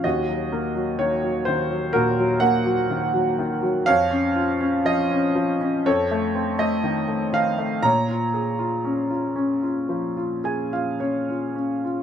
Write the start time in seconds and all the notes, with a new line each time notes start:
0.04 D#2 F#4 D#5
0.29 F#3
0.52 A#3
0.75 F#3
0.99 D#3 C#5
1.23 F#3
1.45 D#3 C5
1.71 F#3
1.93 A#2 F#4 A#4
2.19 F#3
2.40 A#3 A#4 F#5
2.66 F#3
2.90 D#3
3.14 F#3
3.39 D#3
3.63 F#3
3.86 F2 C#5 F5
4.11 C#4
4.35 F4
4.61 C#4
4.85 F3 D#5
5.11 C#4
5.35 F3
5.61 C#4
5.86 F2 A4 C#5
6.11 A3
6.35 C4
6.59 A3 D#5
6.83 D#3
7.08 A3
7.33 D#3 F5
7.58 A3
7.83 A#2 C#5 A#5
8.09 F4
8.34 G#4
8.59 F4
8.84 C#4
9.10 F4
9.36 C#4
9.63 F4
9.89 F3
10.17 F4
10.44 G#4 G#5
10.73 F4 F5
11.00 C#4 C#5
11.29 F4
11.55 C#4
11.85 F4